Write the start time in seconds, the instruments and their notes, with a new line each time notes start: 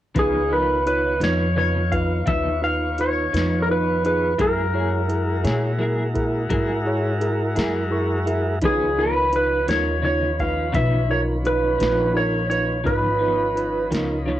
0.15 upright bass C#2, clean electric guitar C#3 F3 B3 D#4, tonewheel organ D#3 B3 F4 C#5, tine electric piano D#4 F4 B4, kick, closed hi-hat
0.19 electric slide guitar G#4
0.49 clean electric guitar F3 B3 D#4, tine electric piano D#4 F4 A#4, electric slide guitar B4
0.86 tine electric piano D#4 F4 C#5, electric slide guitar B4, closed hi-hat
1.20 upright bass F2, clean electric guitar B3 D#4, tine electric piano D#4 F4 B4, electric slide guitar C#5, snare, closed hi-hat
1.24 clean electric guitar F3
1.56 clean electric guitar C#3 F3 B3 D#4, tine electric piano D#4 F4 B4, electric slide guitar C#5
1.92 tine electric piano D#4 F4 B4, electric slide guitar F5, kick, closed hi-hat
2.26 upright bass D#2, clean electric guitar C#3 F3 B3 D#4, tine electric piano D#4 F4 B4, electric slide guitar E5, kick, closed hi-hat
2.62 tine electric piano D#4 F4 B4, electric slide guitar F5
2.98 tine electric piano D#4 F4 B4, electric slide guitar C#5, closed hi-hat
3.33 upright bass F2, clean electric guitar F3 B3 D#4, tine electric piano D#4 F4 B4, snare, closed hi-hat
3.62 electric slide guitar A#4
3.69 tine electric piano D#4 F4 B4, electric slide guitar B4
4.05 tine electric piano D#4 F4 G#4, electric slide guitar B4, closed hi-hat
4.38 upright bass F#2, clean electric guitar F#3 A#3 E4 G#4, tonewheel organ G#3 E4 F#4 A#4, tine electric piano E4 G#4 A#4, electric slide guitar A#4, kick, closed hi-hat
4.73 clean electric guitar A#3 E4 G#4, tine electric piano E4 G#4 C#5
5.08 tine electric piano E4 G#4 A#4, closed hi-hat
5.44 upright bass A#2, tine electric piano E4 G#4 C#5, clean electric guitar E4 G#4, snare, closed hi-hat
5.48 clean electric guitar A#3
5.79 clean electric guitar F#3 A#3 E4, tine electric piano E4 G#4 A#4
5.83 clean electric guitar G#4
6.14 tine electric piano E4 G#4 A#4, kick, closed hi-hat
6.50 upright bass G#2, clean electric guitar F#3 A#3 E4 G#4, tine electric piano E4 G#4 A#4, kick, closed hi-hat
6.85 tine electric piano E4 G#4 C#5
7.21 tine electric piano E4 G#4 A#4, closed hi-hat
7.56 upright bass F#2, clean electric guitar A#3 E4 G#4, tine electric piano E4 G#4 A#4, snare, closed hi-hat
7.91 tine electric piano E4 G#4 A#4 C#6
8.26 tine electric piano E4 G#4 A#4 E5, closed hi-hat
8.61 upright bass C#2, clean electric guitar C#3 F3 B3, tonewheel organ D#3 F3 C#4 B4, tine electric piano D#4 F4 B4, electric slide guitar G#4, kick, closed hi-hat
8.66 clean electric guitar D#4
8.98 clean electric guitar F3 B3 D#4, tine electric piano D#4 F4 A#4, electric slide guitar B4
9.33 tine electric piano D#4 F4 B4, electric slide guitar B4, closed hi-hat
9.68 upright bass D#2, clean electric guitar F3 B3 D#4, tine electric piano D#4 F4 A#4, electric slide guitar C#5, snare, closed hi-hat
10.02 clean electric guitar C#3 F3 B3 D#4, tine electric piano D#4 F4 C#5, electric slide guitar C#5
10.39 tine electric piano D#4 F4 B4, electric slide guitar F5, kick, snare, closed hi-hat
10.72 upright bass B1, clean electric guitar C#3 F3 B3 D#4, tine electric piano D#4 F4 B4, electric slide guitar E5, kick, closed hi-hat
11.09 tine electric piano D#4 F4 A#4, electric slide guitar C#5
11.44 tine electric piano D#4 F4 B4, electric slide guitar B4, closed hi-hat
11.79 upright bass A#1, clean electric guitar F3 B3 D#4, tine electric piano D#4 F4 B4, closed hi-hat
11.83 snare
12.14 tine electric piano D#4 F4 A#4, electric slide guitar C#5
12.50 tine electric piano D#4 F4 B4, electric slide guitar C#5, closed hi-hat
12.84 upright bass G#1, clean electric guitar C#3 F3 B3 D#4, tonewheel organ F3 C#4 D#4 B4, tine electric piano D#4 F4 B4, electric slide guitar B4, kick, closed hi-hat
13.19 clean electric guitar F3 B3 D#4, tine electric piano D#4 F4 B4
13.55 tine electric piano D#4 F4 B4, closed hi-hat
13.91 upright bass C#2, clean electric guitar F3 B3 D#4, tine electric piano D#4 F4 A#4, snare, closed hi-hat
14.26 clean electric guitar C#3 F3 B3, tine electric piano D#4 F4 C#5
14.30 clean electric guitar D#4